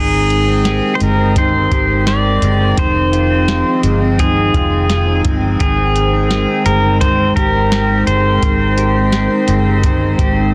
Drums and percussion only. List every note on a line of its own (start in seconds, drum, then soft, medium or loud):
0.30 closed hi-hat soft
0.65 snare medium
0.65 closed hi-hat medium
1.00 closed hi-hat soft
1.36 kick medium
1.36 closed hi-hat medium
1.71 kick medium
1.71 closed hi-hat soft
2.07 snare medium
2.07 closed hi-hat medium
2.42 closed hi-hat soft
2.78 kick loud
2.78 closed hi-hat medium
3.13 closed hi-hat soft
3.48 snare loud
3.48 closed hi-hat medium
3.83 closed hi-hat soft
4.19 kick medium
4.19 closed hi-hat medium
4.54 kick medium
4.54 closed hi-hat soft
4.90 snare medium
4.90 closed hi-hat medium
5.25 kick medium
5.25 closed hi-hat soft
5.60 kick medium
5.60 closed hi-hat medium
5.96 closed hi-hat soft
6.31 snare loud
6.31 closed hi-hat medium
6.66 closed hi-hat soft
7.01 kick medium
7.01 closed hi-hat medium
7.36 kick medium
7.36 closed hi-hat soft
7.72 snare loud
7.72 closed hi-hat medium
8.07 closed hi-hat soft
8.42 kick medium
8.42 closed hi-hat medium
8.78 closed hi-hat soft
9.12 snare loud
9.12 closed hi-hat medium
9.48 closed hi-hat soft
9.83 kick medium
9.83 closed hi-hat medium
10.19 kick medium
10.19 closed hi-hat soft